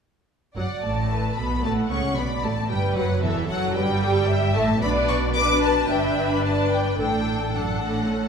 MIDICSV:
0, 0, Header, 1, 6, 480
1, 0, Start_track
1, 0, Key_signature, 2, "major"
1, 0, Tempo, 533333
1, 508, Time_signature, 4, 2, 24, 8
1, 4819, Tempo, 545951
1, 7393, End_track
2, 0, Start_track
2, 0, Title_t, "Violin section"
2, 0, Program_c, 0, 48
2, 510, Note_on_c, 0, 78, 62
2, 736, Note_off_c, 0, 78, 0
2, 752, Note_on_c, 0, 81, 66
2, 1229, Note_off_c, 0, 81, 0
2, 1236, Note_on_c, 0, 83, 64
2, 1479, Note_off_c, 0, 83, 0
2, 1479, Note_on_c, 0, 81, 71
2, 1551, Note_off_c, 0, 81, 0
2, 1712, Note_on_c, 0, 85, 72
2, 1949, Note_off_c, 0, 85, 0
2, 1950, Note_on_c, 0, 83, 65
2, 2191, Note_off_c, 0, 83, 0
2, 2192, Note_on_c, 0, 81, 70
2, 2432, Note_off_c, 0, 81, 0
2, 2435, Note_on_c, 0, 79, 68
2, 2669, Note_off_c, 0, 79, 0
2, 2670, Note_on_c, 0, 78, 66
2, 2904, Note_on_c, 0, 76, 75
2, 2907, Note_off_c, 0, 78, 0
2, 3142, Note_off_c, 0, 76, 0
2, 3150, Note_on_c, 0, 78, 82
2, 3382, Note_on_c, 0, 79, 86
2, 3383, Note_off_c, 0, 78, 0
2, 4083, Note_off_c, 0, 79, 0
2, 4096, Note_on_c, 0, 81, 80
2, 4336, Note_off_c, 0, 81, 0
2, 4337, Note_on_c, 0, 83, 92
2, 4409, Note_off_c, 0, 83, 0
2, 4573, Note_on_c, 0, 85, 89
2, 4645, Note_off_c, 0, 85, 0
2, 4818, Note_on_c, 0, 86, 103
2, 5047, Note_on_c, 0, 81, 85
2, 5050, Note_off_c, 0, 86, 0
2, 5283, Note_off_c, 0, 81, 0
2, 5291, Note_on_c, 0, 79, 78
2, 5647, Note_off_c, 0, 79, 0
2, 5654, Note_on_c, 0, 83, 74
2, 5771, Note_off_c, 0, 83, 0
2, 5775, Note_on_c, 0, 81, 69
2, 6007, Note_off_c, 0, 81, 0
2, 6022, Note_on_c, 0, 79, 69
2, 6249, Note_off_c, 0, 79, 0
2, 6260, Note_on_c, 0, 79, 80
2, 6731, Note_off_c, 0, 79, 0
2, 6745, Note_on_c, 0, 78, 64
2, 7393, Note_off_c, 0, 78, 0
2, 7393, End_track
3, 0, Start_track
3, 0, Title_t, "Violin section"
3, 0, Program_c, 1, 48
3, 505, Note_on_c, 1, 74, 60
3, 960, Note_off_c, 1, 74, 0
3, 996, Note_on_c, 1, 71, 57
3, 1239, Note_off_c, 1, 71, 0
3, 1239, Note_on_c, 1, 69, 48
3, 1481, Note_off_c, 1, 69, 0
3, 1487, Note_on_c, 1, 78, 58
3, 1957, Note_on_c, 1, 74, 52
3, 1961, Note_off_c, 1, 78, 0
3, 2424, Note_off_c, 1, 74, 0
3, 2431, Note_on_c, 1, 71, 73
3, 2902, Note_off_c, 1, 71, 0
3, 2903, Note_on_c, 1, 69, 61
3, 3382, Note_on_c, 1, 71, 62
3, 3383, Note_off_c, 1, 69, 0
3, 3454, Note_off_c, 1, 71, 0
3, 3624, Note_on_c, 1, 69, 66
3, 3857, Note_on_c, 1, 76, 78
3, 3858, Note_off_c, 1, 69, 0
3, 4331, Note_on_c, 1, 74, 89
3, 4335, Note_off_c, 1, 76, 0
3, 4806, Note_off_c, 1, 74, 0
3, 4820, Note_on_c, 1, 71, 77
3, 5283, Note_off_c, 1, 71, 0
3, 5287, Note_on_c, 1, 76, 71
3, 5765, Note_off_c, 1, 76, 0
3, 5771, Note_on_c, 1, 74, 59
3, 6252, Note_off_c, 1, 74, 0
3, 6255, Note_on_c, 1, 69, 66
3, 7393, Note_off_c, 1, 69, 0
3, 7393, End_track
4, 0, Start_track
4, 0, Title_t, "Viola section"
4, 0, Program_c, 2, 48
4, 507, Note_on_c, 2, 54, 53
4, 579, Note_off_c, 2, 54, 0
4, 755, Note_on_c, 2, 57, 60
4, 1231, Note_off_c, 2, 57, 0
4, 1242, Note_on_c, 2, 59, 61
4, 1477, Note_off_c, 2, 59, 0
4, 1483, Note_on_c, 2, 57, 64
4, 1721, Note_off_c, 2, 57, 0
4, 1724, Note_on_c, 2, 61, 62
4, 1957, Note_on_c, 2, 59, 55
4, 1959, Note_off_c, 2, 61, 0
4, 2029, Note_off_c, 2, 59, 0
4, 2194, Note_on_c, 2, 57, 57
4, 2266, Note_off_c, 2, 57, 0
4, 2432, Note_on_c, 2, 55, 60
4, 2668, Note_off_c, 2, 55, 0
4, 2671, Note_on_c, 2, 54, 58
4, 2911, Note_on_c, 2, 52, 68
4, 2912, Note_off_c, 2, 54, 0
4, 3146, Note_off_c, 2, 52, 0
4, 3148, Note_on_c, 2, 54, 75
4, 3382, Note_off_c, 2, 54, 0
4, 3392, Note_on_c, 2, 55, 88
4, 4097, Note_on_c, 2, 57, 70
4, 4102, Note_off_c, 2, 55, 0
4, 4169, Note_off_c, 2, 57, 0
4, 4338, Note_on_c, 2, 71, 69
4, 4340, Note_on_c, 2, 62, 71
4, 4785, Note_off_c, 2, 71, 0
4, 4786, Note_off_c, 2, 62, 0
4, 4823, Note_on_c, 2, 62, 73
4, 4823, Note_on_c, 2, 71, 68
4, 5282, Note_off_c, 2, 71, 0
4, 5284, Note_off_c, 2, 62, 0
4, 5293, Note_on_c, 2, 71, 70
4, 5295, Note_on_c, 2, 62, 79
4, 6232, Note_off_c, 2, 71, 0
4, 6233, Note_off_c, 2, 62, 0
4, 6256, Note_on_c, 2, 62, 50
4, 6259, Note_on_c, 2, 69, 50
4, 6729, Note_off_c, 2, 62, 0
4, 6731, Note_off_c, 2, 69, 0
4, 6742, Note_on_c, 2, 69, 51
4, 6743, Note_on_c, 2, 62, 46
4, 7211, Note_off_c, 2, 69, 0
4, 7212, Note_off_c, 2, 62, 0
4, 7223, Note_on_c, 2, 61, 51
4, 7223, Note_on_c, 2, 69, 56
4, 7393, Note_off_c, 2, 61, 0
4, 7393, Note_off_c, 2, 69, 0
4, 7393, End_track
5, 0, Start_track
5, 0, Title_t, "Cello section"
5, 0, Program_c, 3, 48
5, 509, Note_on_c, 3, 42, 52
5, 581, Note_off_c, 3, 42, 0
5, 753, Note_on_c, 3, 45, 58
5, 1230, Note_off_c, 3, 45, 0
5, 1241, Note_on_c, 3, 47, 58
5, 1477, Note_off_c, 3, 47, 0
5, 1482, Note_on_c, 3, 45, 64
5, 1720, Note_on_c, 3, 49, 62
5, 1721, Note_off_c, 3, 45, 0
5, 1953, Note_off_c, 3, 49, 0
5, 1956, Note_on_c, 3, 47, 55
5, 2194, Note_off_c, 3, 47, 0
5, 2198, Note_on_c, 3, 45, 62
5, 2435, Note_off_c, 3, 45, 0
5, 2436, Note_on_c, 3, 43, 65
5, 2674, Note_on_c, 3, 42, 69
5, 2675, Note_off_c, 3, 43, 0
5, 2909, Note_off_c, 3, 42, 0
5, 2915, Note_on_c, 3, 40, 71
5, 3152, Note_off_c, 3, 40, 0
5, 3154, Note_on_c, 3, 42, 64
5, 3385, Note_off_c, 3, 42, 0
5, 3392, Note_on_c, 3, 43, 76
5, 4102, Note_off_c, 3, 43, 0
5, 4103, Note_on_c, 3, 45, 85
5, 4334, Note_off_c, 3, 45, 0
5, 4342, Note_on_c, 3, 47, 64
5, 5259, Note_off_c, 3, 47, 0
5, 5294, Note_on_c, 3, 43, 67
5, 6250, Note_on_c, 3, 45, 50
5, 6252, Note_off_c, 3, 43, 0
5, 6678, Note_off_c, 3, 45, 0
5, 6737, Note_on_c, 3, 42, 56
5, 6961, Note_off_c, 3, 42, 0
5, 6976, Note_on_c, 3, 45, 59
5, 7393, Note_off_c, 3, 45, 0
5, 7393, End_track
6, 0, Start_track
6, 0, Title_t, "Double bass section"
6, 0, Program_c, 4, 48
6, 504, Note_on_c, 4, 30, 62
6, 576, Note_off_c, 4, 30, 0
6, 748, Note_on_c, 4, 33, 60
6, 1227, Note_off_c, 4, 33, 0
6, 1235, Note_on_c, 4, 35, 58
6, 1474, Note_off_c, 4, 35, 0
6, 1475, Note_on_c, 4, 33, 63
6, 1714, Note_on_c, 4, 37, 56
6, 1717, Note_off_c, 4, 33, 0
6, 1950, Note_off_c, 4, 37, 0
6, 1955, Note_on_c, 4, 35, 56
6, 2193, Note_off_c, 4, 35, 0
6, 2193, Note_on_c, 4, 33, 62
6, 2431, Note_on_c, 4, 31, 64
6, 2433, Note_off_c, 4, 33, 0
6, 2671, Note_on_c, 4, 30, 70
6, 2672, Note_off_c, 4, 31, 0
6, 2908, Note_off_c, 4, 30, 0
6, 2914, Note_on_c, 4, 28, 65
6, 3152, Note_off_c, 4, 28, 0
6, 3153, Note_on_c, 4, 30, 65
6, 3385, Note_off_c, 4, 30, 0
6, 3385, Note_on_c, 4, 31, 76
6, 4095, Note_on_c, 4, 33, 79
6, 4099, Note_off_c, 4, 31, 0
6, 4331, Note_off_c, 4, 33, 0
6, 4339, Note_on_c, 4, 35, 73
6, 5257, Note_off_c, 4, 35, 0
6, 5287, Note_on_c, 4, 31, 65
6, 6248, Note_off_c, 4, 31, 0
6, 6249, Note_on_c, 4, 33, 67
6, 7393, Note_off_c, 4, 33, 0
6, 7393, End_track
0, 0, End_of_file